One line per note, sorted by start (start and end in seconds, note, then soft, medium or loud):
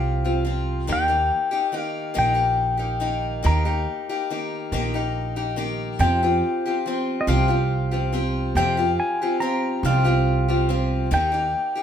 0.00 0.85 C2 medium
0.00 0.24 F3 soft
0.00 0.24 C4 soft
0.00 0.24 F4 medium
0.00 0.23 G4 medium
0.00 0.94 F5 medium
0.24 0.44 F3 soft
0.24 0.43 C4 soft
0.24 0.45 F4 soft
0.24 0.45 G4 soft
0.45 0.87 F3 soft
0.45 0.88 C4 medium
0.45 0.88 F4 medium
0.45 0.88 G4 medium
0.87 1.29 D#2 medium
0.87 1.09 D#3 medium
0.87 1.09 A#3 medium
0.87 1.08 D#4 medium
0.87 1.07 G4 medium
0.93 1.81 G5 loud
1.08 1.52 A#3 soft
1.08 1.51 D#4 soft
1.08 1.50 G4 medium
1.51 1.72 A#3 soft
1.51 1.73 D#4 soft
1.51 1.73 G4 medium
1.72 2.13 D#3 medium
1.72 2.13 A#3 medium
1.72 2.14 D#4 medium
1.72 2.14 G4 medium
1.81 2.17 F5 loud
2.14 3.40 A#1 medium
2.14 2.36 D#3 medium
2.14 2.35 A#3 medium
2.14 2.34 D#4 medium
2.14 2.33 G4 medium
2.19 3.41 G5 medium
2.34 2.78 A#3 soft
2.34 2.78 D#4 soft
2.34 2.76 G4 medium
2.77 2.99 A#3 soft
2.77 3.00 D#4 soft
2.77 3.00 G4 soft
3.00 3.41 D#3 medium
3.00 3.43 A#3 medium
3.00 3.43 D#4 medium
3.00 3.43 G4 medium
3.43 3.85 D#2 medium
3.43 3.65 D#3 medium
3.43 3.65 A#3 medium
3.43 3.64 D#4 medium
3.43 3.64 G4 medium
3.43 5.55 A#5 medium
3.65 4.09 A#3 soft
3.65 4.08 D#4 soft
3.65 4.08 G4 soft
4.09 4.30 A#3 soft
4.09 4.30 D#4 soft
4.09 4.30 G4 medium
4.30 4.71 D#3 medium
4.30 4.72 A#3 medium
4.30 4.73 D#4 medium
4.30 4.73 G4 medium
4.72 5.96 A#1 medium
4.72 4.94 D#3 medium
4.72 4.94 A#3 medium
4.72 4.94 D#4 medium
4.72 4.93 G4 medium
4.94 5.38 A#3 soft
4.94 5.36 D#4 medium
4.94 5.35 G4 medium
5.36 5.56 A#3 soft
5.36 5.56 D#4 soft
5.36 5.57 G4 medium
5.56 6.00 D#3 medium
5.56 6.00 A#3 medium
5.56 6.00 D#4 medium
5.56 5.99 G4 medium
5.99 6.21 F2 medium
5.99 6.40 F2 medium
5.99 6.21 C3 medium
5.99 6.22 F3 medium
5.99 6.22 C4 medium
5.99 6.22 F4 medium
5.99 6.21 G4 medium
5.99 7.25 G5 medium
6.23 6.66 F3 soft
6.23 6.65 C4 soft
6.23 6.65 F4 soft
6.23 6.64 G4 soft
6.66 6.85 F3 soft
6.66 6.86 C4 soft
6.66 6.87 F4 soft
6.66 6.86 G4 soft
6.86 7.27 F3 soft
6.86 7.27 C4 medium
6.86 7.27 F4 medium
6.86 7.28 G4 medium
7.21 7.28 D#5 medium
7.27 8.52 C2 medium
7.27 7.49 F2 medium
7.27 7.49 C3 medium
7.27 7.49 F3 medium
7.27 7.49 C4 medium
7.27 7.48 F4 medium
7.27 7.47 G4 medium
7.27 8.60 F5 medium
7.48 7.93 F3 soft
7.48 7.92 C4 soft
7.48 7.91 F4 soft
7.48 7.90 G4 medium
7.91 8.11 F3 soft
7.91 8.12 C4 soft
7.91 8.13 F4 soft
7.91 8.13 G4 soft
8.13 8.56 F3 soft
8.13 8.56 C4 medium
8.13 8.56 F4 medium
8.13 8.56 G4 medium
8.55 8.96 F2 medium
8.55 8.78 F2 medium
8.55 8.78 C3 medium
8.55 8.78 F3 medium
8.55 8.77 C4 medium
8.55 8.77 F4 medium
8.55 8.76 G4 medium
8.55 8.99 G5 medium
8.77 9.21 F3 soft
8.77 9.21 C4 soft
8.77 9.21 F4 soft
8.77 9.20 G4 medium
9.00 9.40 G#5 medium
9.22 9.39 F3 soft
9.22 9.41 C4 soft
9.22 9.41 F4 soft
9.22 9.41 G4 soft
9.40 9.84 F3 medium
9.40 9.84 C4 medium
9.40 9.85 F4 medium
9.40 9.85 G4 medium
9.40 9.85 A#5 medium
9.83 11.08 C2 medium
9.83 10.06 F2 medium
9.83 10.06 C3 medium
9.83 10.05 F3 medium
9.83 10.05 C4 medium
9.83 10.04 F4 medium
9.83 10.03 G4 medium
9.83 11.13 F5 medium
10.04 10.49 F3 soft
10.04 10.48 C4 soft
10.04 10.48 F4 soft
10.04 10.47 G4 medium
10.48 10.68 F3 soft
10.48 10.68 C4 soft
10.48 10.69 F4 soft
10.48 10.69 G4 medium
10.69 11.10 F3 medium
10.69 11.11 C4 medium
10.69 11.11 F4 medium
10.69 11.12 G4 medium
11.11 11.53 D#2 medium
11.11 11.33 D#3 medium
11.11 11.33 A#3 medium
11.11 11.33 D#4 medium
11.11 11.31 G4 medium
11.11 11.83 G5 loud
11.32 11.76 A#3 soft
11.32 11.76 D#4 soft
11.32 11.74 G4 medium
11.75 11.83 A#3 soft
11.75 11.83 D#4 soft
11.75 11.83 G4 soft